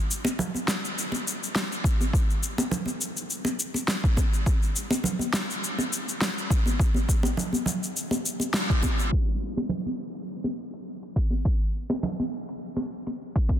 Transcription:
0.11 shaker medium
0.25 muted conga medium
0.25 shaker soft
0.39 low conga medium
0.39 shaker soft
0.55 high conga medium
0.55 shaker soft
0.68 snare medium
0.68 shaker medium
0.85 shaker soft
0.99 shaker soft
1.12 muted conga soft
1.12 shaker soft
1.28 shaker medium
1.43 shaker soft
1.55 snare medium
1.55 shaker soft
1.72 shaker soft
1.84 kick loud
1.84 shaker medium
2.01 high conga medium
2.01 shaker soft
2.13 kick medium
2.13 shaker soft
2.30 shaker soft
2.43 shaker medium
2.58 muted conga medium
2.58 shaker soft
2.71 low conga medium
2.71 shaker soft
2.86 high conga medium
2.86 shaker soft
3.01 shaker medium
3.17 shaker soft
3.30 shaker soft
3.45 muted conga soft
3.45 shaker soft
3.60 shaker medium
3.74 muted conga soft
3.74 shaker soft
3.88 snare medium
3.88 shaker soft
4.04 kick medium
4.04 shaker soft
4.17 kick medium
4.17 muted conga medium
4.17 shaker medium
4.34 shaker soft
4.46 kick loud
4.46 shaker soft
4.63 shaker soft
4.76 shaker medium
4.91 muted conga medium
4.91 shaker soft
5.04 low conga medium
5.04 shaker soft
5.19 high conga medium
5.19 shaker soft
5.33 snare medium
5.33 shaker medium
5.50 shaker soft
5.64 shaker soft
5.78 muted conga soft
5.78 shaker soft
5.93 shaker medium
6.09 shaker soft
6.21 snare medium
6.21 shaker soft
6.38 shaker soft
6.50 kick medium
6.50 shaker medium
6.66 high conga medium
6.66 shaker soft
6.80 kick loud
6.80 shaker soft
6.94 high conga medium
6.94 shaker soft
7.09 kick medium
7.09 shaker medium
7.23 muted conga medium
7.23 shaker soft
7.37 low conga medium
7.37 shaker soft
7.53 high conga medium
7.53 shaker soft
7.66 low conga medium
7.66 shaker medium
7.83 shaker soft
7.97 shaker soft
8.11 muted conga soft
8.11 shaker soft
8.26 shaker medium
8.40 muted conga soft
8.40 shaker soft
8.54 snare medium
8.54 shaker soft
8.70 kick loud
8.70 shaker soft
8.83 kick medium
8.83 muted conga medium
8.83 high conga medium
8.83 shaker medium
8.98 muted conga soft
8.98 shaker soft
9.12 kick medium
9.28 closed hi-hat soft
9.57 closed hi-hat soft
9.57 muted conga medium
9.69 low conga medium
9.86 closed hi-hat soft
9.86 high conga medium
10.15 closed hi-hat soft
10.44 closed hi-hat soft
10.44 muted conga soft
10.73 closed hi-hat soft
11.03 closed hi-hat soft
11.16 kick medium
11.30 closed hi-hat medium
11.30 high conga medium
11.45 kick medium
11.61 closed hi-hat soft
11.75 shaker medium
11.90 closed hi-hat soft
11.90 muted conga medium
12.03 low conga medium
12.19 closed hi-hat soft
12.19 high conga medium
12.33 shaker medium
12.49 closed hi-hat soft
12.49 shaker soft
12.63 shaker soft
12.77 closed hi-hat soft
12.77 muted conga soft
12.92 shaker medium
13.07 closed hi-hat soft
13.07 muted conga soft
13.07 shaker soft
13.21 shaker soft
13.36 kick medium
13.36 closed hi-hat soft
13.49 kick medium
13.49 muted conga medium

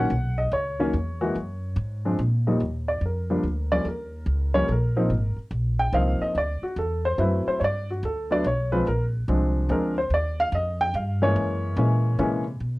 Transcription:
0.00 0.10 C#4 medium
0.00 0.39 F#5 medium
0.10 0.51 B1 medium
0.38 0.53 D#5 medium
0.52 0.92 C#2 medium
0.52 2.15 C#5 medium
0.79 0.93 D#3 medium
0.79 0.93 F#3 medium
0.79 0.93 A#3 medium
0.79 0.93 C#4 medium
0.93 1.34 E2 medium
1.21 1.34 E3 medium
1.21 1.34 G#3 medium
1.21 1.34 A#3 medium
1.21 1.34 F#4 medium
1.35 1.75 F#2 medium
1.76 2.17 G#2 medium
2.05 2.18 F3 medium
2.05 2.18 G#3 soft
2.05 2.18 C4 medium
2.05 2.18 D4 medium
2.19 2.59 A#2 medium
2.47 2.60 D#2 medium
2.47 2.60 F3 medium
2.47 2.60 G3 soft
2.47 2.60 A#3 soft
2.47 2.60 D#4 medium
2.60 3.00 D#2 medium
2.88 3.02 D5 medium
3.01 3.42 F2 medium
3.06 3.69 A#4 medium
3.30 3.43 F3 medium
3.30 3.43 G3 medium
3.30 3.43 A#3 medium
3.30 3.43 D4 medium
3.43 3.84 D2 medium
3.72 3.85 F3 medium
3.72 3.85 G3 medium
3.72 3.85 A#3 soft
3.72 3.85 C#4 medium
3.72 3.86 D5 medium
3.83 4.25 D#2 medium
3.83 3.87 A4 soft
3.88 4.52 A#4 medium
4.26 4.67 C#2 medium
4.54 4.68 F3 medium
4.54 4.68 G3 medium
4.54 4.68 A#3 medium
4.54 4.68 C#4 medium
4.54 4.69 C#5 medium
4.68 5.09 A#1 medium
4.68 4.71 A4 soft
4.68 5.35 A#4 medium
4.96 5.09 F3 medium
4.96 5.10 A#3 medium
4.96 5.10 C4 medium
4.96 5.10 D#4 medium
5.10 5.36 G#1 medium
5.36 muted upright bass stroke soft
5.51 5.92 A#1 medium
5.79 5.94 G5 medium
5.93 6.19 C2 medium
5.93 6.35 F3 medium
5.93 6.36 A#3 medium
5.93 6.36 C4 medium
5.93 6.36 D#4 medium
5.93 6.21 F5 medium
6.21 6.36 D#5 medium
6.21 muted upright bass stroke soft
6.35 6.60 D2 medium
6.35 6.63 D5 medium
6.62 6.77 F#4 medium
6.62 muted upright bass stroke soft
6.76 7.17 E2 medium
6.76 7.04 A4 medium
7.05 7.19 C5 medium
7.18 7.44 F#2 medium
7.18 7.60 F#3 medium
7.18 7.60 A3 medium
7.18 7.60 C4 medium
7.18 7.60 E4 medium
7.18 7.46 B4 medium
7.46 7.61 C5 medium
7.46 muted upright bass stroke soft
7.60 8.01 G2 medium
7.60 7.63 C#5 medium
7.64 7.89 D5 medium
7.91 8.03 F#4 medium
8.03 8.43 D2 medium
8.03 8.30 A4 medium
8.31 8.43 F#3 medium
8.31 8.43 A3 medium
8.31 8.43 B3 medium
8.31 8.43 D4 medium
8.31 8.45 D5 medium
8.44 8.84 B1 medium
8.44 8.72 C#5 medium
8.72 8.85 F3 medium
8.72 8.85 G#3 medium
8.72 8.85 C4 medium
8.72 8.85 F4 medium
8.72 8.86 B4 medium
8.87 9.27 A#1 medium
8.87 9.04 A#4 medium
9.28 9.68 C2 medium
9.28 9.68 F3 medium
9.28 9.68 G#3 medium
9.28 9.68 C4 medium
9.28 9.68 D4 medium
9.69 10.09 D2 medium
9.69 9.94 F3 medium
9.69 9.94 G#3 medium
9.69 9.94 C4 medium
9.69 9.94 D4 medium
9.69 9.96 A#4 medium
9.98 10.11 C5 medium
10.10 10.51 D#2 medium
10.10 10.38 D5 medium
10.40 10.53 F5 loud
10.52 10.92 F2 medium
10.52 10.80 D#5 medium
10.81 10.94 G5 loud
10.94 11.34 G2 medium
10.94 11.21 F5 medium
11.22 11.74 E3 medium
11.22 11.74 G#3 medium
11.22 11.75 A#3 medium
11.22 11.75 C#4 medium
11.22 12.15 C#5 medium
11.36 11.76 F#2 medium
11.77 12.17 A#2 medium
11.77 12.17 E3 medium
11.77 12.17 G#3 medium
11.77 12.17 A#3 medium
11.77 12.18 C#4 medium
12.19 12.59 C3 medium
12.19 12.43 E3 medium
12.19 12.43 G#3 medium
12.19 12.43 A#3 medium
12.19 12.43 C#4 medium
12.60 12.79 B2 medium

